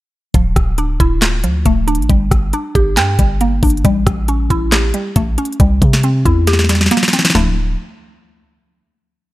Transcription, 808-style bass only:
0.34 D1
0.56 D1
1.00 D1
1.44 D2
1.66 D1
1.99 A1
2.10 G1
2.31 G1
2.75 G1
2.97 G2
3.19 G1
3.63 G1
3.85 A1
4.07 A1
4.50 A1
5.16 A1
5.60 C2
5.82 C3
6.25 E2
7.35 D1

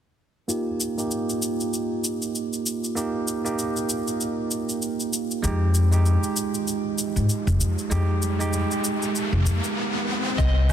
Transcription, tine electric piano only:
0.48 A#3 D#4 G4
0.97 A#3 D#4 G4
2.95 A#3 D#4 G4
3.44 A#3 D#4 G4
5.42 G#3 D#4 G4
5.92 G#3 D#4 G4
7.90 G#3 D#4 G4
8.39 G#3 D#4 G4

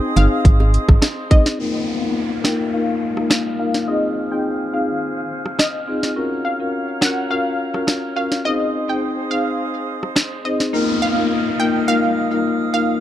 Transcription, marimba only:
0.16 C4 D#4 G#4 C5
1.30 C4 D#4 G#4 C5
1.59 A#3 D#4 F4 A#4
2.03 A#3 D#4 F4 A#4
2.45 A#3 D#4 F4 A#4
2.73 A#3 D#4 F4 A#4
3.17 A#3 D#4 F4 A#4
3.59 A#3 D#4 F4 A#4
3.87 C4 D#4 F4 G#4
4.31 C4 D#4 F4 G#4
4.73 C4 D#4 F4 G#4
5.87 C4 D#4 F4 G#4
6.16 C#4 F4 F#4 A#4
6.60 C#4 F4 F#4 A#4
7.02 C#4 F4 F#4 A#4
7.30 C#4 F4 F#4 A#4
7.74 C#4 F4 F#4 A#4
8.16 C#4 F4 F#4 A#4
8.45 C4 D#4 G#4 C5
8.88 C4 D#4 G#4 C5
9.30 C4 D#4 G#4 C5
10.45 C4 D#4 G#4 C5
10.73 A#3 D#4 F4 A#4
11.17 A#3 D#4 F4 A#4
11.59 A#3 D#4 F4 A#4
11.87 A#3 D#4 F4 A#4
12.31 A#3 D#4 F4 A#4
12.73 A#3 D#4 F4 A#4

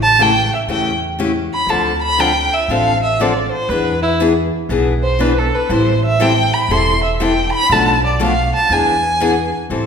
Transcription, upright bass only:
Already playing: A1
0.67 E2
1.67 D2
2.68 A1
3.69 E2
4.69 B1
5.69 A1
6.68 E1
7.70 B1
8.69 E2
9.70 A1

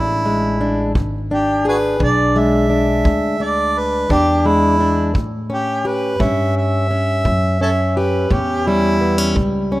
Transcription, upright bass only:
Already playing: A1
0.95 G#1
2.00 B1
3.05 D2
4.10 E2
5.15 A2
6.20 G2
7.25 F#2
8.31 E2
9.36 C#2

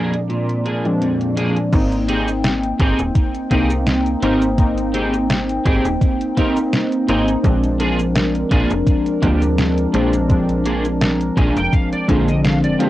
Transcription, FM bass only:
1.73 G#1
2.80 G#1
2.99 D#1
3.51 C2
4.23 G#1
5.65 G#1
5.85 D#1
7.09 G#1
7.44 A#1
8.51 A#1
8.71 F1
9.23 D2
9.94 A#1
11.37 A#1
11.56 F1
12.08 A#1
12.64 F1

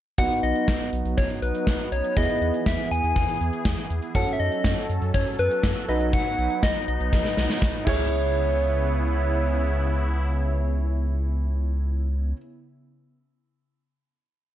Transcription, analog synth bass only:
0.18 B1
0.43 B1
0.68 B1
0.93 B1
1.05 B1
1.18 B1
1.42 B1
1.67 B1
1.92 B1
2.17 E2
2.41 E2
2.66 E2
2.91 E2
3.03 E2
3.16 E2
3.41 E2
3.65 E2
3.90 E2
4.15 F#2
4.40 F#2
4.65 F#2
4.89 F#2
5.02 F#2
5.14 F#2
5.39 F#2
5.63 F#2
5.89 B1
6.38 B1
6.63 B1
6.88 B1
7.00 B1
7.13 B1
7.37 B1
7.62 B1
7.87 C#2

